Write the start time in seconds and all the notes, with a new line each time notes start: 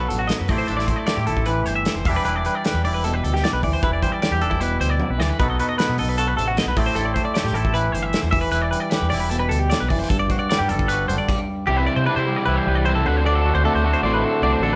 Already playing: B2 B3 F#4 A4
0.09 A1 F#3 A4, closed hi-hat
0.19 F#4
0.28 D#5, snare, closed hi-hat
0.39 F#2 B4
0.48 A1 A2 A3 C4 E4 D5, kick, open hi-hat
0.52 G4
0.58 C5
0.67 A1 D4 A4, closed hi-hat
0.77 E4 D5, snare
0.87 A3 C5, kick, closed hi-hat
0.96 D5
1.06 G4 D5, snare, closed hi-hat
1.16 A2 G4
1.27 A1 E4 A4, closed hi-hat
1.37 kick
1.46 E3 B4, closed hi-hat
1.66 G1 C5, closed hi-hat
1.75 E5
1.85 snare, closed hi-hat
1.95 F1 C5
2.05 E1 E3 G3 E5, kick, open hi-hat
2.09 D4 E4 G4
2.16 B4
2.25 E1 E4 B4, closed hi-hat
2.36 D5
2.45 G3 B4, closed hi-hat
2.55 D5
2.65 G4 B4, snare, closed hi-hat
2.74 E2
2.84 E1 E4 D5, open hi-hat
2.94 B4
3.04 B2 A4, closed hi-hat
3.14 B4
3.23 D2 A4, closed hi-hat
3.34 G4, snare
3.44 D5, snare, closed hi-hat
3.53 B1 B4
3.63 D2 E3 D5, kick, open hi-hat
3.73 C5
3.83 E1 E4 B4, kick, closed hi-hat
3.93 D5
4.02 G3 C5, kick, closed hi-hat
4.12 D5
4.22 G4 D5, snare, closed hi-hat
4.31 E2 G4
4.41 E1 D4 A4, closed hi-hat
4.50 E4, kick
4.60 B2 B4, closed hi-hat
4.80 D2 C5, closed hi-hat
4.90 D5
5.00 high tom
5.10 B1 B4
5.18 D2 E3 D5, snare
5.30 B4
5.40 B1 B2 B3 D#4 F#4 A4 B4, kick, closed hi-hat
5.50 D#5
5.59 F#4 B4, closed hi-hat
5.69 D#5
5.77 B3 B4, snare, closed hi-hat
5.89 B2
5.98 B1 A4 D#5, open hi-hat
6.09 B4
6.18 F#4 A4, closed hi-hat
6.28 B4
6.36 A1 C3 A4, closed hi-hat
6.48 F#4
6.57 B2 D#5, snare, closed hi-hat
6.66 B1 B4
6.77 A1 A2 A3 C4 E4 G4 D5, kick, open hi-hat
6.86 C5
6.95 A1 E4 A4, closed hi-hat
7.05 D5
7.14 A3 C5, kick, closed hi-hat
7.25 D5
7.34 G4 D5, snare, closed hi-hat
7.44 A2 G4, snare
7.52 A1 A4, closed hi-hat
7.56 E4
7.65 kick
7.74 E3 B4, closed hi-hat
7.92 G1 C5, closed hi-hat
8.03 E5
8.13 snare, closed hi-hat
8.22 E2 C5
8.31 E1 E3 E5, kick, open hi-hat
8.41 B4
8.51 E1 E4 B4, closed hi-hat
8.62 D5
8.71 G3 B4, closed hi-hat
8.80 D5
8.90 G4 B4, snare, closed hi-hat
9.02 E2
9.10 E1 E4 D5, snare, open hi-hat
9.20 B4
9.30 B2 A4, closed hi-hat
9.39 B4
9.49 D2 A4, closed hi-hat
9.59 G4
9.70 D5, snare, closed hi-hat
9.80 B1 B4
9.89 F#1 E3 D5, kick, open hi-hat
9.99 C5, snare
10.09 G1 G2 A4, kick, closed hi-hat
10.20 D5
10.30 F#4 C5, kick, closed hi-hat
10.39 D5
10.50 G3 D5, snare, closed hi-hat
10.58 G2 G4
10.69 G1 A4, closed hi-hat
10.79 kick
10.88 F#4 B4, closed hi-hat
11.08 F#1 D3 C5, closed hi-hat
11.18 D5
11.29 kick, crash
11.67 C2 C3 E3 G3 C4 E4 G4
11.77 B4
11.86 D5
11.96 C3 C5
12.06 C3 E3 G3 C4 D4 E4 B4
12.16 C3 E4 C5
12.27 G3 C4 E4
12.36 D5
12.45 C2 E3 G3 C4 E4 B4
12.56 C5
12.67 C2 G3 B4
12.75 D5
12.86 E3 G3 C4 E4 C5
12.95 C2 A4
13.05 D2 D3 A3 C4 F#4 B4
13.16 C5
13.25 D3 A3 C4 D4 F#4 D5
13.35 A4
13.45 F#4
13.55 D2 C5
13.64 D3 A3 C4 D4 F#4 A4
13.74 D2 C5
13.84 A3 C4 F#4 A4
13.93 C5
14.02 A1 A2 D3 A3 C5 D5
14.07 C4 F#4
14.14 B4
14.24 F#4 A4
14.42 C2 D3 A3 C4 D4 F#4 D5
14.53 C5
14.60 A1 D3 C4 F#4 A4
14.65 A3